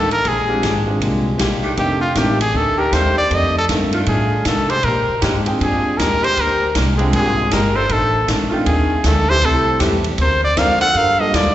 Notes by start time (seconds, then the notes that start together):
Already playing: A1 F2 D#3 A3 D4 A4
0.11 A#4, ride
0.23 A#1 A#2 D3 G#3 C4 D4 G4 G#4, kick, ride
0.28 G#4
0.48 G#3 C4 D4 F4 G4
0.62 G#1 A#2 G#3 D4 G4, kick, snare, hi-hat pedal, ride
0.86 G#3 C4 D4 F4 G#4
1.00 C2 A#2 G#3 D4 G4, kick, ride
1.38 A#1 A#2 G#3 D4 G4, kick, snare, hi-hat pedal, ride
1.62 D#3 A3 D4 G4, muted upright bass stroke
1.77 F1 F2 D#3 A3 C4 D4 D#4 G4, kick, ride
2.01 F4
2.15 A1 F2 D#3 A3 C4 D4 D#4 G4, kick, snare, hi-hat pedal, ride
2.41 G#4, ride
2.53 D2 F2 D#3 A3 D4 A4, kick
2.77 D#3 A3 D4 G4 A#4
2.91 D#2 F2 D#3 A3 D4 C5, kick, snare, hi-hat pedal, ride
3.18 D5
3.30 F2 D#3 A3 C4 D4 D#4 G4, kick, ride
3.34 D4 D#5
3.58 A4
3.68 F2 G2 D#3 A3 C4 D4 D#4 A4, kick, snare, hi-hat pedal, ride
3.92 D#3 A3 D4 F4, ride
4.06 F2 A2 D#3 A3 G#4, kick, ride
4.10 D4
4.45 F2 C3 D#3 A3 D4 A4, kick, snare, hi-hat pedal, ride
4.69 D3 G#3 C4 G4 C5, ride
4.83 A#2 G#3 A#4, kick, ride
4.87 D4 G4
5.09 muted upright bass stroke
5.22 G#2 A#2 D3 G#3 C4 D4 G4, kick, snare, hi-hat pedal, ride
5.46 C4 D4 F4 G#4 G5, ride
5.58 G2 A#2 G#3 D4, kick, ride
5.63 G4 G#4
5.98 D#2 A#2 G#3 D4 G4 A#4, kick, snare, hi-hat pedal, ride
6.21 D3 G#3 C4 G4 C5, ride
6.37 D2 A#2 G#3 D4 G4 A#4, kick, ride
6.75 C2 A#2 G#3 D4 G4, kick, snare, hi-hat pedal, ride
6.97 D3 G#3 C4 D4 F4 G#4 G5, ride
7.13 G#1 A#2 G#3 D4 G#4, kick, ride
7.17 G4
7.51 G1 A#2 G#3 D4 G4 A#4, kick, snare, hi-hat pedal, ride
7.74 D#3 A3 D4 A4 C5
7.89 A1 F2 D#3 A3 A4, kick, ride
7.94 D4
8.27 A#1 F2 D#3 A3 D4, kick, snare, hi-hat pedal, ride
8.50 D#3 A3 C4 D4 D#4 F4 G5
8.66 D#2 F2 D#3 A3 D4 G#4, kick, ride
9.04 D2 F2 D#3 A3 D4 A4, kick, snare, hi-hat pedal, ride
9.30 E3 A3 C4 G4 C5
9.42 C2 A2 G3 A3 C4 E4 G4 A4, kick, ride
9.46 E4
9.79 E2 A2 E3 G3 A3 C4 G4, kick, snare, hi-hat pedal, ride
9.83 E4
10.04 ride
10.18 D2 D3 C4 F#4 C5, kick, ride
10.22 A#4
10.44 D5
10.56 F2 D3 C4 F#4 A#4 F5, kick, snare, hi-hat pedal, ride
10.80 F3 A#3 D4 A4 F#5, ride
10.95 G2 G3 D4 F4 A#4 F5, kick, ride
11.19 G3 A#3 D4 F4 A4 D#5
11.33 D#2 G3 D4 F4 A#4 D5, kick, snare, hi-hat pedal, ride